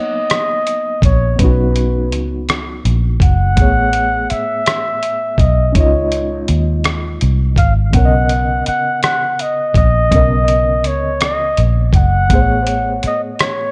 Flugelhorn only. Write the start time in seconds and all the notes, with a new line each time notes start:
Already playing: D#5
1.05 C#5
1.40 B4
3.23 F#5
4.31 E5
5.39 D#5
5.76 C#5
7.58 F5
7.95 F#5
8.68 F#5
9.04 F#5
9.41 D#5
9.77 D#5
10.87 C#5
11.24 D#5
11.96 F#5
13.07 D#5
13.42 C#5